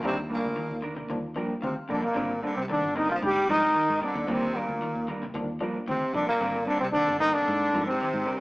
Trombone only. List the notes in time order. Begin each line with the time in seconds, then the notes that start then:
0.05 C3
0.32 A#2
1.64 C4
1.92 D4
2.04 A#3
2.44 D4
2.57 C4
2.71 D4
2.97 D#4
3.11 F4
3.26 G4
3.50 D#4
4.03 D4
4.31 C4
4.57 A#3
5.89 C4
6.15 D4
6.28 A#3
6.67 D4
6.81 C4
6.92 D4
7.20 D#4
7.34 D4
7.87 C4